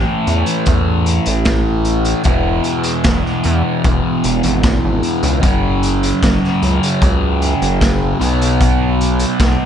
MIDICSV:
0, 0, Header, 1, 4, 480
1, 0, Start_track
1, 0, Tempo, 793651
1, 1365, Time_signature, 4, 2, 24, 8
1, 5839, End_track
2, 0, Start_track
2, 0, Title_t, "Distorted electric guitar"
2, 0, Program_c, 0, 30
2, 0, Note_on_c, 0, 45, 83
2, 0, Note_on_c, 0, 52, 94
2, 0, Note_on_c, 0, 57, 98
2, 1349, Note_off_c, 0, 45, 0
2, 1353, Note_on_c, 0, 40, 104
2, 1355, Note_off_c, 0, 52, 0
2, 1359, Note_off_c, 0, 57, 0
2, 1364, Note_on_c, 0, 47, 95
2, 1372, Note_on_c, 0, 52, 95
2, 3264, Note_off_c, 0, 40, 0
2, 3267, Note_on_c, 0, 42, 91
2, 3271, Note_off_c, 0, 47, 0
2, 3275, Note_off_c, 0, 52, 0
2, 3279, Note_on_c, 0, 49, 96
2, 3283, Note_on_c, 0, 54, 105
2, 4938, Note_off_c, 0, 42, 0
2, 4944, Note_off_c, 0, 49, 0
2, 4951, Note_on_c, 0, 47, 81
2, 4959, Note_off_c, 0, 54, 0
2, 4962, Note_on_c, 0, 54, 82
2, 4971, Note_on_c, 0, 59, 90
2, 5839, Note_off_c, 0, 47, 0
2, 5839, Note_off_c, 0, 54, 0
2, 5839, Note_off_c, 0, 59, 0
2, 5839, End_track
3, 0, Start_track
3, 0, Title_t, "Analog synth bass"
3, 0, Program_c, 1, 38
3, 164, Note_on_c, 1, 40, 89
3, 270, Note_off_c, 1, 40, 0
3, 408, Note_on_c, 1, 40, 102
3, 724, Note_off_c, 1, 40, 0
3, 767, Note_on_c, 1, 33, 80
3, 1296, Note_off_c, 1, 33, 0
3, 1363, Note_on_c, 1, 28, 99
3, 1576, Note_off_c, 1, 28, 0
3, 1843, Note_on_c, 1, 28, 92
3, 1950, Note_off_c, 1, 28, 0
3, 2088, Note_on_c, 1, 40, 106
3, 2193, Note_off_c, 1, 40, 0
3, 2327, Note_on_c, 1, 28, 111
3, 2433, Note_off_c, 1, 28, 0
3, 2567, Note_on_c, 1, 28, 93
3, 2673, Note_off_c, 1, 28, 0
3, 2686, Note_on_c, 1, 32, 99
3, 2898, Note_off_c, 1, 32, 0
3, 2930, Note_on_c, 1, 32, 84
3, 3034, Note_off_c, 1, 32, 0
3, 3162, Note_on_c, 1, 37, 86
3, 3270, Note_off_c, 1, 37, 0
3, 3286, Note_on_c, 1, 30, 95
3, 3709, Note_off_c, 1, 30, 0
3, 3767, Note_on_c, 1, 30, 107
3, 3872, Note_off_c, 1, 30, 0
3, 4007, Note_on_c, 1, 37, 85
3, 4112, Note_off_c, 1, 37, 0
3, 4247, Note_on_c, 1, 37, 102
3, 4562, Note_off_c, 1, 37, 0
3, 4606, Note_on_c, 1, 30, 88
3, 4922, Note_off_c, 1, 30, 0
3, 4965, Note_on_c, 1, 35, 88
3, 5596, Note_off_c, 1, 35, 0
3, 5685, Note_on_c, 1, 35, 88
3, 5788, Note_off_c, 1, 35, 0
3, 5839, End_track
4, 0, Start_track
4, 0, Title_t, "Drums"
4, 164, Note_on_c, 9, 42, 66
4, 225, Note_off_c, 9, 42, 0
4, 280, Note_on_c, 9, 42, 67
4, 340, Note_off_c, 9, 42, 0
4, 398, Note_on_c, 9, 42, 62
4, 404, Note_on_c, 9, 36, 105
4, 458, Note_off_c, 9, 42, 0
4, 464, Note_off_c, 9, 36, 0
4, 642, Note_on_c, 9, 42, 67
4, 703, Note_off_c, 9, 42, 0
4, 760, Note_on_c, 9, 42, 67
4, 821, Note_off_c, 9, 42, 0
4, 877, Note_on_c, 9, 42, 61
4, 880, Note_on_c, 9, 38, 103
4, 883, Note_on_c, 9, 36, 106
4, 937, Note_off_c, 9, 42, 0
4, 940, Note_off_c, 9, 38, 0
4, 944, Note_off_c, 9, 36, 0
4, 1118, Note_on_c, 9, 42, 59
4, 1178, Note_off_c, 9, 42, 0
4, 1239, Note_on_c, 9, 42, 69
4, 1299, Note_off_c, 9, 42, 0
4, 1353, Note_on_c, 9, 42, 60
4, 1363, Note_on_c, 9, 36, 106
4, 1413, Note_off_c, 9, 42, 0
4, 1423, Note_off_c, 9, 36, 0
4, 1596, Note_on_c, 9, 42, 59
4, 1656, Note_off_c, 9, 42, 0
4, 1715, Note_on_c, 9, 42, 77
4, 1775, Note_off_c, 9, 42, 0
4, 1838, Note_on_c, 9, 42, 67
4, 1841, Note_on_c, 9, 38, 114
4, 1843, Note_on_c, 9, 36, 106
4, 1899, Note_off_c, 9, 42, 0
4, 1902, Note_off_c, 9, 38, 0
4, 1904, Note_off_c, 9, 36, 0
4, 1969, Note_on_c, 9, 38, 33
4, 2029, Note_off_c, 9, 38, 0
4, 2078, Note_on_c, 9, 42, 69
4, 2139, Note_off_c, 9, 42, 0
4, 2324, Note_on_c, 9, 42, 71
4, 2325, Note_on_c, 9, 36, 108
4, 2385, Note_off_c, 9, 42, 0
4, 2386, Note_off_c, 9, 36, 0
4, 2563, Note_on_c, 9, 42, 66
4, 2624, Note_off_c, 9, 42, 0
4, 2681, Note_on_c, 9, 42, 74
4, 2742, Note_off_c, 9, 42, 0
4, 2802, Note_on_c, 9, 42, 66
4, 2803, Note_on_c, 9, 36, 116
4, 2805, Note_on_c, 9, 38, 96
4, 2863, Note_off_c, 9, 42, 0
4, 2864, Note_off_c, 9, 36, 0
4, 2866, Note_off_c, 9, 38, 0
4, 3043, Note_on_c, 9, 42, 65
4, 3103, Note_off_c, 9, 42, 0
4, 3162, Note_on_c, 9, 42, 72
4, 3223, Note_off_c, 9, 42, 0
4, 3284, Note_on_c, 9, 36, 115
4, 3284, Note_on_c, 9, 42, 72
4, 3344, Note_off_c, 9, 36, 0
4, 3344, Note_off_c, 9, 42, 0
4, 3525, Note_on_c, 9, 42, 68
4, 3586, Note_off_c, 9, 42, 0
4, 3648, Note_on_c, 9, 42, 72
4, 3708, Note_off_c, 9, 42, 0
4, 3766, Note_on_c, 9, 36, 102
4, 3770, Note_on_c, 9, 42, 68
4, 3773, Note_on_c, 9, 38, 106
4, 3826, Note_off_c, 9, 36, 0
4, 3830, Note_off_c, 9, 42, 0
4, 3833, Note_off_c, 9, 38, 0
4, 3895, Note_on_c, 9, 38, 36
4, 3955, Note_off_c, 9, 38, 0
4, 4007, Note_on_c, 9, 42, 66
4, 4067, Note_off_c, 9, 42, 0
4, 4132, Note_on_c, 9, 42, 72
4, 4192, Note_off_c, 9, 42, 0
4, 4244, Note_on_c, 9, 36, 107
4, 4249, Note_on_c, 9, 42, 65
4, 4305, Note_off_c, 9, 36, 0
4, 4310, Note_off_c, 9, 42, 0
4, 4487, Note_on_c, 9, 42, 69
4, 4548, Note_off_c, 9, 42, 0
4, 4608, Note_on_c, 9, 42, 65
4, 4669, Note_off_c, 9, 42, 0
4, 4725, Note_on_c, 9, 36, 104
4, 4728, Note_on_c, 9, 42, 65
4, 4731, Note_on_c, 9, 38, 109
4, 4786, Note_off_c, 9, 36, 0
4, 4789, Note_off_c, 9, 42, 0
4, 4792, Note_off_c, 9, 38, 0
4, 4967, Note_on_c, 9, 42, 68
4, 5027, Note_off_c, 9, 42, 0
4, 5090, Note_on_c, 9, 42, 69
4, 5151, Note_off_c, 9, 42, 0
4, 5205, Note_on_c, 9, 36, 96
4, 5210, Note_on_c, 9, 42, 69
4, 5266, Note_off_c, 9, 36, 0
4, 5271, Note_off_c, 9, 42, 0
4, 5448, Note_on_c, 9, 42, 64
4, 5509, Note_off_c, 9, 42, 0
4, 5561, Note_on_c, 9, 42, 68
4, 5622, Note_off_c, 9, 42, 0
4, 5683, Note_on_c, 9, 36, 109
4, 5684, Note_on_c, 9, 42, 75
4, 5687, Note_on_c, 9, 38, 111
4, 5744, Note_off_c, 9, 36, 0
4, 5745, Note_off_c, 9, 42, 0
4, 5748, Note_off_c, 9, 38, 0
4, 5839, End_track
0, 0, End_of_file